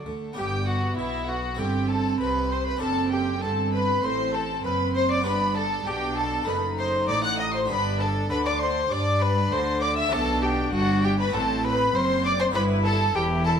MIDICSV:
0, 0, Header, 1, 8, 480
1, 0, Start_track
1, 0, Key_signature, 1, "major"
1, 0, Tempo, 611621
1, 286, Time_signature, 4, 2, 24, 8
1, 6042, Tempo, 606061
1, 10713, End_track
2, 0, Start_track
2, 0, Title_t, "Violin section"
2, 0, Program_c, 0, 48
2, 38, Note_on_c, 0, 69, 65
2, 278, Note_on_c, 0, 79, 113
2, 283, Note_off_c, 0, 69, 0
2, 506, Note_off_c, 0, 79, 0
2, 521, Note_on_c, 0, 78, 101
2, 758, Note_on_c, 0, 76, 107
2, 765, Note_off_c, 0, 78, 0
2, 997, Note_on_c, 0, 78, 96
2, 998, Note_off_c, 0, 76, 0
2, 1242, Note_off_c, 0, 78, 0
2, 1244, Note_on_c, 0, 79, 90
2, 1484, Note_on_c, 0, 81, 102
2, 1485, Note_off_c, 0, 79, 0
2, 1722, Note_on_c, 0, 83, 95
2, 1725, Note_off_c, 0, 81, 0
2, 1960, Note_off_c, 0, 83, 0
2, 1964, Note_on_c, 0, 84, 106
2, 2085, Note_off_c, 0, 84, 0
2, 2088, Note_on_c, 0, 83, 101
2, 2196, Note_on_c, 0, 81, 120
2, 2205, Note_off_c, 0, 83, 0
2, 2435, Note_off_c, 0, 81, 0
2, 2435, Note_on_c, 0, 79, 94
2, 2675, Note_off_c, 0, 79, 0
2, 2678, Note_on_c, 0, 81, 104
2, 2922, Note_off_c, 0, 81, 0
2, 2925, Note_on_c, 0, 83, 110
2, 3161, Note_off_c, 0, 83, 0
2, 3162, Note_on_c, 0, 84, 104
2, 3397, Note_on_c, 0, 81, 106
2, 3404, Note_off_c, 0, 84, 0
2, 3641, Note_off_c, 0, 81, 0
2, 3643, Note_on_c, 0, 83, 109
2, 3879, Note_off_c, 0, 83, 0
2, 3885, Note_on_c, 0, 84, 107
2, 4003, Note_off_c, 0, 84, 0
2, 4004, Note_on_c, 0, 86, 104
2, 4124, Note_off_c, 0, 86, 0
2, 4128, Note_on_c, 0, 83, 120
2, 4359, Note_on_c, 0, 81, 106
2, 4366, Note_off_c, 0, 83, 0
2, 4601, Note_off_c, 0, 81, 0
2, 4603, Note_on_c, 0, 79, 111
2, 4841, Note_on_c, 0, 81, 104
2, 4843, Note_off_c, 0, 79, 0
2, 5080, Note_on_c, 0, 83, 97
2, 5082, Note_off_c, 0, 81, 0
2, 5321, Note_off_c, 0, 83, 0
2, 5325, Note_on_c, 0, 84, 112
2, 5387, Note_off_c, 0, 84, 0
2, 5565, Note_on_c, 0, 86, 120
2, 5681, Note_off_c, 0, 86, 0
2, 5689, Note_on_c, 0, 90, 113
2, 5803, Note_off_c, 0, 90, 0
2, 5803, Note_on_c, 0, 87, 109
2, 5916, Note_on_c, 0, 84, 106
2, 5920, Note_off_c, 0, 87, 0
2, 6039, Note_off_c, 0, 84, 0
2, 6045, Note_on_c, 0, 83, 126
2, 6279, Note_off_c, 0, 83, 0
2, 6288, Note_on_c, 0, 81, 102
2, 6352, Note_off_c, 0, 81, 0
2, 6520, Note_on_c, 0, 83, 117
2, 6638, Note_off_c, 0, 83, 0
2, 6640, Note_on_c, 0, 86, 119
2, 6754, Note_on_c, 0, 84, 119
2, 6758, Note_off_c, 0, 86, 0
2, 6994, Note_on_c, 0, 86, 119
2, 6997, Note_off_c, 0, 84, 0
2, 7231, Note_on_c, 0, 83, 111
2, 7237, Note_off_c, 0, 86, 0
2, 7475, Note_off_c, 0, 83, 0
2, 7481, Note_on_c, 0, 84, 124
2, 7715, Note_on_c, 0, 86, 127
2, 7720, Note_off_c, 0, 84, 0
2, 7835, Note_off_c, 0, 86, 0
2, 7841, Note_on_c, 0, 88, 121
2, 7958, Note_off_c, 0, 88, 0
2, 7959, Note_on_c, 0, 81, 127
2, 8200, Note_off_c, 0, 81, 0
2, 8203, Note_on_c, 0, 79, 114
2, 8436, Note_on_c, 0, 78, 127
2, 8442, Note_off_c, 0, 79, 0
2, 8675, Note_off_c, 0, 78, 0
2, 8678, Note_on_c, 0, 79, 114
2, 8798, Note_off_c, 0, 79, 0
2, 8804, Note_on_c, 0, 83, 108
2, 8921, Note_off_c, 0, 83, 0
2, 8926, Note_on_c, 0, 81, 112
2, 9160, Note_off_c, 0, 81, 0
2, 9162, Note_on_c, 0, 83, 119
2, 9397, Note_off_c, 0, 83, 0
2, 9399, Note_on_c, 0, 84, 127
2, 9641, Note_off_c, 0, 84, 0
2, 9643, Note_on_c, 0, 86, 127
2, 9760, Note_on_c, 0, 84, 117
2, 9762, Note_off_c, 0, 86, 0
2, 9809, Note_off_c, 0, 84, 0
2, 9881, Note_on_c, 0, 83, 127
2, 9944, Note_off_c, 0, 83, 0
2, 10123, Note_on_c, 0, 81, 118
2, 10356, Note_off_c, 0, 81, 0
2, 10357, Note_on_c, 0, 79, 120
2, 10421, Note_off_c, 0, 79, 0
2, 10597, Note_on_c, 0, 81, 122
2, 10713, Note_off_c, 0, 81, 0
2, 10713, End_track
3, 0, Start_track
3, 0, Title_t, "Violin"
3, 0, Program_c, 1, 40
3, 284, Note_on_c, 1, 67, 85
3, 509, Note_off_c, 1, 67, 0
3, 525, Note_on_c, 1, 66, 81
3, 760, Note_off_c, 1, 66, 0
3, 764, Note_on_c, 1, 64, 87
3, 1011, Note_on_c, 1, 66, 84
3, 1023, Note_off_c, 1, 64, 0
3, 1247, Note_on_c, 1, 67, 79
3, 1259, Note_off_c, 1, 66, 0
3, 1487, Note_off_c, 1, 67, 0
3, 1494, Note_on_c, 1, 69, 87
3, 1726, Note_off_c, 1, 69, 0
3, 1730, Note_on_c, 1, 71, 91
3, 1977, Note_on_c, 1, 72, 85
3, 1989, Note_off_c, 1, 71, 0
3, 2092, Note_off_c, 1, 72, 0
3, 2097, Note_on_c, 1, 71, 84
3, 2209, Note_off_c, 1, 71, 0
3, 2216, Note_on_c, 1, 69, 81
3, 2456, Note_on_c, 1, 67, 82
3, 2468, Note_off_c, 1, 69, 0
3, 2691, Note_off_c, 1, 67, 0
3, 2696, Note_on_c, 1, 69, 87
3, 2759, Note_off_c, 1, 69, 0
3, 2933, Note_on_c, 1, 71, 84
3, 3175, Note_on_c, 1, 72, 92
3, 3187, Note_off_c, 1, 71, 0
3, 3410, Note_on_c, 1, 69, 83
3, 3422, Note_off_c, 1, 72, 0
3, 3647, Note_off_c, 1, 69, 0
3, 3657, Note_on_c, 1, 71, 86
3, 3720, Note_off_c, 1, 71, 0
3, 3889, Note_on_c, 1, 72, 105
3, 4005, Note_off_c, 1, 72, 0
3, 4012, Note_on_c, 1, 74, 96
3, 4126, Note_off_c, 1, 74, 0
3, 4130, Note_on_c, 1, 71, 89
3, 4362, Note_off_c, 1, 71, 0
3, 4371, Note_on_c, 1, 69, 97
3, 4607, Note_on_c, 1, 67, 98
3, 4619, Note_off_c, 1, 69, 0
3, 4842, Note_off_c, 1, 67, 0
3, 4847, Note_on_c, 1, 69, 93
3, 5080, Note_off_c, 1, 69, 0
3, 5089, Note_on_c, 1, 71, 90
3, 5152, Note_off_c, 1, 71, 0
3, 5327, Note_on_c, 1, 72, 101
3, 5557, Note_off_c, 1, 72, 0
3, 5562, Note_on_c, 1, 74, 107
3, 5677, Note_off_c, 1, 74, 0
3, 5682, Note_on_c, 1, 78, 91
3, 5800, Note_off_c, 1, 78, 0
3, 5803, Note_on_c, 1, 75, 102
3, 5851, Note_off_c, 1, 75, 0
3, 5923, Note_on_c, 1, 72, 84
3, 6038, Note_off_c, 1, 72, 0
3, 6043, Note_on_c, 1, 71, 94
3, 6284, Note_on_c, 1, 69, 99
3, 6296, Note_off_c, 1, 71, 0
3, 6517, Note_off_c, 1, 69, 0
3, 6522, Note_on_c, 1, 71, 104
3, 6570, Note_off_c, 1, 71, 0
3, 6642, Note_on_c, 1, 74, 98
3, 6689, Note_off_c, 1, 74, 0
3, 6767, Note_on_c, 1, 72, 95
3, 7012, Note_on_c, 1, 74, 107
3, 7024, Note_off_c, 1, 72, 0
3, 7244, Note_on_c, 1, 71, 107
3, 7256, Note_off_c, 1, 74, 0
3, 7484, Note_on_c, 1, 72, 101
3, 7496, Note_off_c, 1, 71, 0
3, 7720, Note_on_c, 1, 74, 102
3, 7732, Note_off_c, 1, 72, 0
3, 7837, Note_off_c, 1, 74, 0
3, 7842, Note_on_c, 1, 76, 108
3, 7958, Note_on_c, 1, 69, 119
3, 7970, Note_off_c, 1, 76, 0
3, 8200, Note_on_c, 1, 67, 97
3, 8212, Note_off_c, 1, 69, 0
3, 8439, Note_off_c, 1, 67, 0
3, 8443, Note_on_c, 1, 66, 107
3, 8688, Note_on_c, 1, 67, 108
3, 8700, Note_off_c, 1, 66, 0
3, 8805, Note_off_c, 1, 67, 0
3, 8814, Note_on_c, 1, 71, 97
3, 8928, Note_on_c, 1, 69, 107
3, 8940, Note_off_c, 1, 71, 0
3, 9169, Note_on_c, 1, 71, 120
3, 9180, Note_off_c, 1, 69, 0
3, 9410, Note_on_c, 1, 72, 106
3, 9422, Note_off_c, 1, 71, 0
3, 9645, Note_off_c, 1, 72, 0
3, 9649, Note_on_c, 1, 74, 120
3, 9696, Note_off_c, 1, 74, 0
3, 9762, Note_on_c, 1, 72, 110
3, 9810, Note_off_c, 1, 72, 0
3, 9884, Note_on_c, 1, 71, 113
3, 9948, Note_off_c, 1, 71, 0
3, 10121, Note_on_c, 1, 69, 104
3, 10360, Note_on_c, 1, 67, 110
3, 10372, Note_off_c, 1, 69, 0
3, 10593, Note_off_c, 1, 67, 0
3, 10598, Note_on_c, 1, 69, 96
3, 10661, Note_off_c, 1, 69, 0
3, 10713, End_track
4, 0, Start_track
4, 0, Title_t, "Violin section"
4, 0, Program_c, 2, 48
4, 295, Note_on_c, 2, 67, 81
4, 358, Note_off_c, 2, 67, 0
4, 543, Note_on_c, 2, 66, 82
4, 769, Note_on_c, 2, 64, 86
4, 771, Note_off_c, 2, 66, 0
4, 1004, Note_on_c, 2, 66, 86
4, 1008, Note_off_c, 2, 64, 0
4, 1245, Note_off_c, 2, 66, 0
4, 1247, Note_on_c, 2, 67, 82
4, 1482, Note_off_c, 2, 67, 0
4, 1486, Note_on_c, 2, 69, 78
4, 1722, Note_on_c, 2, 71, 89
4, 1727, Note_off_c, 2, 69, 0
4, 1785, Note_off_c, 2, 71, 0
4, 1959, Note_on_c, 2, 72, 83
4, 2073, Note_on_c, 2, 71, 86
4, 2080, Note_off_c, 2, 72, 0
4, 2199, Note_off_c, 2, 71, 0
4, 2199, Note_on_c, 2, 69, 91
4, 2435, Note_on_c, 2, 67, 84
4, 2437, Note_off_c, 2, 69, 0
4, 2673, Note_on_c, 2, 69, 93
4, 2675, Note_off_c, 2, 67, 0
4, 2915, Note_on_c, 2, 71, 88
4, 2919, Note_off_c, 2, 69, 0
4, 3149, Note_on_c, 2, 72, 100
4, 3156, Note_off_c, 2, 71, 0
4, 3390, Note_on_c, 2, 69, 94
4, 3392, Note_off_c, 2, 72, 0
4, 3629, Note_on_c, 2, 71, 91
4, 3638, Note_off_c, 2, 69, 0
4, 3872, Note_off_c, 2, 71, 0
4, 3878, Note_on_c, 2, 72, 87
4, 3999, Note_off_c, 2, 72, 0
4, 4005, Note_on_c, 2, 74, 94
4, 4111, Note_on_c, 2, 71, 86
4, 4125, Note_off_c, 2, 74, 0
4, 4174, Note_off_c, 2, 71, 0
4, 4348, Note_on_c, 2, 69, 95
4, 4591, Note_off_c, 2, 69, 0
4, 4594, Note_on_c, 2, 67, 97
4, 4834, Note_off_c, 2, 67, 0
4, 4836, Note_on_c, 2, 69, 99
4, 5078, Note_on_c, 2, 71, 93
4, 5079, Note_off_c, 2, 69, 0
4, 5141, Note_off_c, 2, 71, 0
4, 5320, Note_on_c, 2, 72, 96
4, 5556, Note_off_c, 2, 72, 0
4, 5570, Note_on_c, 2, 74, 97
4, 5686, Note_off_c, 2, 74, 0
4, 5692, Note_on_c, 2, 78, 100
4, 5805, Note_off_c, 2, 78, 0
4, 5811, Note_on_c, 2, 75, 89
4, 5926, Note_off_c, 2, 75, 0
4, 5930, Note_on_c, 2, 72, 89
4, 6046, Note_off_c, 2, 72, 0
4, 6048, Note_on_c, 2, 71, 99
4, 6285, Note_off_c, 2, 71, 0
4, 6285, Note_on_c, 2, 69, 99
4, 6523, Note_off_c, 2, 69, 0
4, 6529, Note_on_c, 2, 71, 103
4, 6643, Note_off_c, 2, 71, 0
4, 6647, Note_on_c, 2, 74, 107
4, 6763, Note_off_c, 2, 74, 0
4, 6771, Note_on_c, 2, 72, 102
4, 7000, Note_off_c, 2, 72, 0
4, 7004, Note_on_c, 2, 74, 102
4, 7242, Note_off_c, 2, 74, 0
4, 7246, Note_on_c, 2, 71, 91
4, 7478, Note_on_c, 2, 72, 100
4, 7483, Note_off_c, 2, 71, 0
4, 7541, Note_off_c, 2, 72, 0
4, 7720, Note_on_c, 2, 74, 97
4, 7768, Note_off_c, 2, 74, 0
4, 7842, Note_on_c, 2, 76, 93
4, 7958, Note_off_c, 2, 76, 0
4, 7963, Note_on_c, 2, 69, 105
4, 8201, Note_off_c, 2, 69, 0
4, 8209, Note_on_c, 2, 67, 84
4, 8441, Note_off_c, 2, 67, 0
4, 8453, Note_on_c, 2, 66, 98
4, 8682, Note_on_c, 2, 67, 109
4, 8683, Note_off_c, 2, 66, 0
4, 8730, Note_off_c, 2, 67, 0
4, 8811, Note_on_c, 2, 71, 117
4, 8924, Note_off_c, 2, 71, 0
4, 8924, Note_on_c, 2, 69, 106
4, 8987, Note_off_c, 2, 69, 0
4, 9177, Note_on_c, 2, 71, 98
4, 9405, Note_off_c, 2, 71, 0
4, 9410, Note_on_c, 2, 72, 105
4, 9641, Note_off_c, 2, 72, 0
4, 9644, Note_on_c, 2, 74, 109
4, 9763, Note_off_c, 2, 74, 0
4, 9779, Note_on_c, 2, 72, 103
4, 9884, Note_on_c, 2, 71, 117
4, 9890, Note_off_c, 2, 72, 0
4, 10117, Note_on_c, 2, 69, 100
4, 10122, Note_off_c, 2, 71, 0
4, 10358, Note_off_c, 2, 69, 0
4, 10361, Note_on_c, 2, 67, 109
4, 10424, Note_off_c, 2, 67, 0
4, 10603, Note_on_c, 2, 69, 101
4, 10666, Note_off_c, 2, 69, 0
4, 10713, End_track
5, 0, Start_track
5, 0, Title_t, "Viola section"
5, 0, Program_c, 3, 48
5, 37, Note_on_c, 3, 57, 56
5, 283, Note_off_c, 3, 57, 0
5, 288, Note_on_c, 3, 59, 84
5, 1217, Note_off_c, 3, 59, 0
5, 1250, Note_on_c, 3, 60, 82
5, 2189, Note_off_c, 3, 60, 0
5, 2204, Note_on_c, 3, 60, 79
5, 2675, Note_off_c, 3, 60, 0
5, 2691, Note_on_c, 3, 60, 81
5, 3159, Note_off_c, 3, 60, 0
5, 3167, Note_on_c, 3, 60, 85
5, 4106, Note_off_c, 3, 60, 0
5, 4130, Note_on_c, 3, 62, 81
5, 4595, Note_off_c, 3, 62, 0
5, 4604, Note_on_c, 3, 62, 89
5, 5074, Note_off_c, 3, 62, 0
5, 5086, Note_on_c, 3, 63, 84
5, 6043, Note_off_c, 3, 63, 0
5, 6043, Note_on_c, 3, 62, 95
5, 6509, Note_off_c, 3, 62, 0
5, 6518, Note_on_c, 3, 62, 90
5, 6989, Note_off_c, 3, 62, 0
5, 7004, Note_on_c, 3, 62, 99
5, 7942, Note_off_c, 3, 62, 0
5, 7963, Note_on_c, 3, 62, 106
5, 8905, Note_off_c, 3, 62, 0
5, 8929, Note_on_c, 3, 60, 95
5, 9396, Note_off_c, 3, 60, 0
5, 9406, Note_on_c, 3, 60, 90
5, 9874, Note_off_c, 3, 60, 0
5, 9884, Note_on_c, 3, 64, 96
5, 10352, Note_off_c, 3, 64, 0
5, 10364, Note_on_c, 3, 64, 90
5, 10713, Note_off_c, 3, 64, 0
5, 10713, End_track
6, 0, Start_track
6, 0, Title_t, "Harpsichord"
6, 0, Program_c, 4, 6
6, 0, Note_on_c, 4, 57, 40
6, 0, Note_on_c, 4, 62, 42
6, 0, Note_on_c, 4, 66, 37
6, 49, Note_on_c, 4, 50, 38
6, 240, Note_off_c, 4, 57, 0
6, 244, Note_off_c, 4, 62, 0
6, 251, Note_off_c, 4, 66, 0
6, 261, Note_on_c, 4, 59, 62
6, 265, Note_off_c, 4, 50, 0
6, 272, Note_on_c, 4, 62, 57
6, 287, Note_on_c, 4, 67, 56
6, 296, Note_on_c, 4, 43, 65
6, 742, Note_off_c, 4, 43, 0
6, 776, Note_on_c, 4, 47, 72
6, 1206, Note_off_c, 4, 59, 0
6, 1211, Note_off_c, 4, 62, 0
6, 1214, Note_on_c, 4, 60, 55
6, 1219, Note_off_c, 4, 67, 0
6, 1220, Note_off_c, 4, 47, 0
6, 1225, Note_on_c, 4, 64, 55
6, 1237, Note_on_c, 4, 69, 49
6, 1248, Note_on_c, 4, 43, 61
6, 1696, Note_off_c, 4, 43, 0
6, 1734, Note_on_c, 4, 48, 62
6, 2161, Note_off_c, 4, 60, 0
6, 2166, Note_off_c, 4, 64, 0
6, 2172, Note_off_c, 4, 69, 0
6, 2172, Note_on_c, 4, 60, 60
6, 2178, Note_off_c, 4, 48, 0
6, 2184, Note_on_c, 4, 62, 62
6, 2196, Note_on_c, 4, 69, 60
6, 2207, Note_on_c, 4, 42, 66
6, 2653, Note_off_c, 4, 60, 0
6, 2655, Note_off_c, 4, 42, 0
6, 2688, Note_on_c, 4, 43, 66
6, 3136, Note_off_c, 4, 43, 0
6, 3166, Note_on_c, 4, 45, 65
6, 3614, Note_off_c, 4, 45, 0
6, 3645, Note_on_c, 4, 42, 64
6, 4082, Note_off_c, 4, 62, 0
6, 4088, Note_off_c, 4, 69, 0
6, 4093, Note_off_c, 4, 42, 0
6, 4094, Note_on_c, 4, 59, 68
6, 4109, Note_on_c, 4, 62, 66
6, 4119, Note_on_c, 4, 67, 63
6, 4130, Note_on_c, 4, 43, 66
6, 4575, Note_off_c, 4, 43, 0
6, 4606, Note_on_c, 4, 47, 73
6, 5039, Note_off_c, 4, 59, 0
6, 5046, Note_off_c, 4, 62, 0
6, 5049, Note_on_c, 4, 57, 58
6, 5052, Note_off_c, 4, 67, 0
6, 5053, Note_off_c, 4, 47, 0
6, 5060, Note_on_c, 4, 63, 63
6, 5072, Note_on_c, 4, 69, 58
6, 5085, Note_on_c, 4, 42, 64
6, 5532, Note_off_c, 4, 42, 0
6, 5565, Note_on_c, 4, 45, 73
6, 5995, Note_off_c, 4, 57, 0
6, 6001, Note_off_c, 4, 63, 0
6, 6007, Note_off_c, 4, 69, 0
6, 6008, Note_on_c, 4, 59, 64
6, 6011, Note_off_c, 4, 45, 0
6, 6019, Note_on_c, 4, 62, 65
6, 6033, Note_on_c, 4, 67, 59
6, 6041, Note_on_c, 4, 43, 66
6, 6489, Note_off_c, 4, 43, 0
6, 6525, Note_on_c, 4, 50, 81
6, 6970, Note_off_c, 4, 50, 0
6, 7005, Note_on_c, 4, 55, 75
6, 7451, Note_off_c, 4, 55, 0
6, 7483, Note_on_c, 4, 50, 77
6, 7911, Note_off_c, 4, 59, 0
6, 7916, Note_off_c, 4, 62, 0
6, 7923, Note_off_c, 4, 67, 0
6, 7930, Note_off_c, 4, 50, 0
6, 7930, Note_on_c, 4, 59, 65
6, 7944, Note_on_c, 4, 62, 70
6, 7955, Note_on_c, 4, 67, 75
6, 7967, Note_on_c, 4, 47, 77
6, 8413, Note_off_c, 4, 47, 0
6, 8441, Note_on_c, 4, 43, 85
6, 8878, Note_off_c, 4, 59, 0
6, 8886, Note_off_c, 4, 62, 0
6, 8888, Note_on_c, 4, 60, 61
6, 8891, Note_off_c, 4, 43, 0
6, 8891, Note_off_c, 4, 67, 0
6, 8897, Note_on_c, 4, 66, 64
6, 8923, Note_on_c, 4, 45, 77
6, 9371, Note_off_c, 4, 45, 0
6, 9401, Note_on_c, 4, 42, 78
6, 9836, Note_off_c, 4, 60, 0
6, 9840, Note_off_c, 4, 66, 0
6, 9850, Note_off_c, 4, 42, 0
6, 9850, Note_on_c, 4, 59, 67
6, 9860, Note_on_c, 4, 64, 74
6, 9872, Note_on_c, 4, 67, 69
6, 9884, Note_on_c, 4, 43, 86
6, 10330, Note_off_c, 4, 43, 0
6, 10360, Note_on_c, 4, 40, 81
6, 10713, Note_off_c, 4, 40, 0
6, 10713, Note_off_c, 4, 59, 0
6, 10713, Note_off_c, 4, 64, 0
6, 10713, Note_off_c, 4, 67, 0
6, 10713, End_track
7, 0, Start_track
7, 0, Title_t, "Cello section"
7, 0, Program_c, 5, 48
7, 47, Note_on_c, 5, 50, 49
7, 110, Note_off_c, 5, 50, 0
7, 286, Note_on_c, 5, 43, 81
7, 737, Note_off_c, 5, 43, 0
7, 769, Note_on_c, 5, 47, 85
7, 1238, Note_off_c, 5, 47, 0
7, 1249, Note_on_c, 5, 43, 76
7, 1728, Note_off_c, 5, 43, 0
7, 1729, Note_on_c, 5, 48, 80
7, 2198, Note_off_c, 5, 48, 0
7, 2210, Note_on_c, 5, 42, 81
7, 2678, Note_off_c, 5, 42, 0
7, 2687, Note_on_c, 5, 43, 87
7, 3165, Note_on_c, 5, 45, 78
7, 3167, Note_off_c, 5, 43, 0
7, 3635, Note_off_c, 5, 45, 0
7, 3642, Note_on_c, 5, 42, 77
7, 4114, Note_off_c, 5, 42, 0
7, 4122, Note_on_c, 5, 43, 89
7, 4601, Note_on_c, 5, 47, 97
7, 4602, Note_off_c, 5, 43, 0
7, 5072, Note_off_c, 5, 47, 0
7, 5081, Note_on_c, 5, 42, 87
7, 5552, Note_off_c, 5, 42, 0
7, 5557, Note_on_c, 5, 45, 84
7, 6038, Note_off_c, 5, 45, 0
7, 6040, Note_on_c, 5, 43, 97
7, 6520, Note_off_c, 5, 43, 0
7, 6520, Note_on_c, 5, 50, 95
7, 6989, Note_off_c, 5, 50, 0
7, 7000, Note_on_c, 5, 55, 95
7, 7470, Note_off_c, 5, 55, 0
7, 7481, Note_on_c, 5, 50, 96
7, 7951, Note_off_c, 5, 50, 0
7, 7963, Note_on_c, 5, 47, 97
7, 8433, Note_off_c, 5, 47, 0
7, 8449, Note_on_c, 5, 43, 108
7, 8917, Note_off_c, 5, 43, 0
7, 8925, Note_on_c, 5, 45, 104
7, 9394, Note_off_c, 5, 45, 0
7, 9405, Note_on_c, 5, 42, 98
7, 9874, Note_off_c, 5, 42, 0
7, 9882, Note_on_c, 5, 43, 101
7, 10351, Note_off_c, 5, 43, 0
7, 10362, Note_on_c, 5, 40, 106
7, 10713, Note_off_c, 5, 40, 0
7, 10713, End_track
8, 0, Start_track
8, 0, Title_t, "Double bass section"
8, 0, Program_c, 6, 48
8, 42, Note_on_c, 6, 38, 55
8, 104, Note_off_c, 6, 38, 0
8, 287, Note_on_c, 6, 31, 85
8, 737, Note_off_c, 6, 31, 0
8, 765, Note_on_c, 6, 35, 78
8, 1236, Note_off_c, 6, 35, 0
8, 1246, Note_on_c, 6, 31, 79
8, 1726, Note_off_c, 6, 31, 0
8, 1727, Note_on_c, 6, 36, 73
8, 2197, Note_off_c, 6, 36, 0
8, 2203, Note_on_c, 6, 30, 85
8, 2674, Note_off_c, 6, 30, 0
8, 2687, Note_on_c, 6, 31, 76
8, 3162, Note_on_c, 6, 33, 81
8, 3167, Note_off_c, 6, 31, 0
8, 3634, Note_off_c, 6, 33, 0
8, 3643, Note_on_c, 6, 30, 77
8, 4114, Note_off_c, 6, 30, 0
8, 4117, Note_on_c, 6, 31, 84
8, 4596, Note_on_c, 6, 35, 90
8, 4600, Note_off_c, 6, 31, 0
8, 5070, Note_off_c, 6, 35, 0
8, 5079, Note_on_c, 6, 30, 83
8, 5551, Note_off_c, 6, 30, 0
8, 5556, Note_on_c, 6, 33, 91
8, 6037, Note_on_c, 6, 31, 98
8, 6038, Note_off_c, 6, 33, 0
8, 6513, Note_on_c, 6, 38, 84
8, 6519, Note_off_c, 6, 31, 0
8, 6986, Note_off_c, 6, 38, 0
8, 6997, Note_on_c, 6, 43, 97
8, 7469, Note_off_c, 6, 43, 0
8, 7479, Note_on_c, 6, 38, 89
8, 7949, Note_off_c, 6, 38, 0
8, 7959, Note_on_c, 6, 35, 105
8, 8431, Note_off_c, 6, 35, 0
8, 8437, Note_on_c, 6, 31, 98
8, 8911, Note_off_c, 6, 31, 0
8, 8920, Note_on_c, 6, 33, 93
8, 9391, Note_off_c, 6, 33, 0
8, 9400, Note_on_c, 6, 30, 94
8, 9871, Note_off_c, 6, 30, 0
8, 9879, Note_on_c, 6, 31, 91
8, 10349, Note_off_c, 6, 31, 0
8, 10356, Note_on_c, 6, 28, 97
8, 10713, Note_off_c, 6, 28, 0
8, 10713, End_track
0, 0, End_of_file